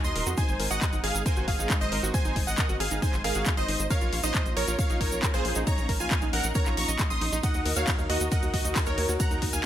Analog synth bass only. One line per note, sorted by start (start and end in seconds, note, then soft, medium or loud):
0.04 0.13 D#2 medium
0.15 0.24 D#1 loud
0.27 0.35 F2 loud
0.49 0.57 G#1 medium
0.60 0.68 G#1 loud
0.71 0.79 G#1 medium
0.93 1.01 G#1 medium
1.04 1.12 G#1 loud
1.15 1.23 G#1 medium
1.37 1.46 G#1 medium
1.48 1.57 G#1 loud
1.59 1.68 G#1 loud
1.81 1.90 G#1 medium
1.92 2.01 G#1 loud
2.03 2.12 G#1 loud
2.25 2.34 G#1 medium
2.36 2.45 G#1 loud
2.47 2.56 G#1 medium
2.69 2.78 G#1 medium
2.80 2.89 G#1 loud
2.91 3.00 G#1 loud
3.13 3.22 G#1 medium
3.24 3.33 G#1 loud
3.35 3.44 G#1 loud
3.58 3.66 G#1 medium
3.68 3.77 G#1 loud
3.79 3.88 G#1 medium
4.02 4.10 A#1 medium
4.13 4.21 A#1 loud
4.24 4.32 A#1 loud
4.46 4.54 A#1 medium
4.57 4.66 A#1 loud
4.68 4.76 A#1 medium
4.90 4.99 A#1 medium
5.01 5.10 A#1 loud
5.12 5.21 A#1 loud
5.34 5.43 A#1 medium
5.45 5.54 A#1 loud
5.56 5.65 A#1 medium
5.78 5.87 A#1 medium
5.89 5.98 A#1 loud
6.00 6.09 A#1 loud
6.22 6.31 A#1 medium
6.33 6.42 A#1 loud
6.44 6.53 A#1 medium
6.66 6.75 A#1 medium
6.77 6.86 A#1 loud
6.88 6.97 A#1 loud
7.10 7.19 A#1 medium
7.21 7.30 A#1 loud
7.32 7.41 A#1 medium
7.54 7.63 D#2 medium
7.66 7.74 D#2 loud
7.77 7.85 D#2 loud
7.99 8.07 D#2 medium
8.10 8.18 D#2 loud
8.21 8.29 D#2 medium
8.43 8.51 D#2 medium
8.54 8.62 D#2 loud
8.65 8.74 D#2 loud
8.87 8.96 D#2 medium
8.98 9.07 D#2 loud
9.09 9.18 D#2 medium
9.31 9.40 D#2 medium
9.42 9.51 D#2 loud
9.53 9.62 D#2 medium